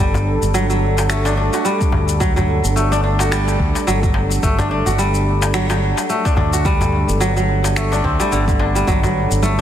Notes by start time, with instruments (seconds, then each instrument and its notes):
Already playing: kora A3 D4, analog synth pad D4 A4
0.00 fretless electric bass G1, kora G3
0.14 darbuka dum, shaker
0.42 fretless electric bass G1, shaker
0.54 kora F#3, shaker
0.70 kora F#3, shaker
0.98 darbuka tek, shaker
1.09 kora A3, finger snap, shaker
1.25 kora D4, darbuka tek, shaker
1.37 kora D4
1.53 kora F#4, darbuka tek, shaker
1.65 kora G3, shaker
1.81 kick, shaker
1.92 fretless electric bass D2, darbuka dum
2.09 shaker
2.20 kora F#3, kick, shaker
2.36 kora F#3, darbuka dum, shaker
2.48 darbuka ka
2.64 fretless electric bass G1, shaker
2.76 kora A3, shaker
2.92 kora D4, shaker
3.04 kora D4, darbuka ka
3.19 kora F#4, darbuka tek, shaker
3.32 kora G3, finger snap, shaker
3.48 darbuka ka, shaker
3.60 fretless electric bass D2, kick
3.75 darbuka tek, shaker
3.87 fretless electric bass G1, kora F#3, shaker
4.03 kora F#3, kick, shaker
4.14 darbuka tek
4.31 shaker
4.43 fretless electric bass G1, kora A3, kick, shaker
4.58 kora D4, darbuka dum, shaker
4.71 kora D4
4.86 fretless electric bass G1, kora F#4, shaker
4.98 kora G3, shaker
5.15 shaker
5.42 darbuka tek, shaker
5.54 kora F#3, finger snap, shaker
5.70 kora F#3, darbuka tek, shaker
5.98 darbuka tek, shaker
6.10 kora A3, shaker
6.25 kora D4, kick, shaker
6.37 fretless electric bass D2, kora D4, darbuka dum
6.53 kora F#4, shaker
6.65 kora G3, kick, shaker
6.81 darbuka dum, shaker
6.93 darbuka ka
7.09 fretless electric bass G1, shaker
7.20 kora F#3, shaker
7.37 kora F#3, shaker
7.49 darbuka ka
7.64 darbuka tek, shaker
7.76 kora A3, finger snap, shaker
7.92 kora D4, darbuka ka, shaker
8.04 fretless electric bass D2, kora C4, kick
8.20 kora G3, darbuka tek, shaker
8.32 fretless electric bass G1, kora D3, shaker
8.48 kora D3, kick, shaker
8.59 kora D4, darbuka tek
8.75 kora G3, shaker
8.87 fretless electric bass G1, kora F#3, kick, shaker
9.03 kora F#3, darbuka dum, shaker
9.31 fretless electric bass G1, shaker
9.43 kora A3, low conga, shaker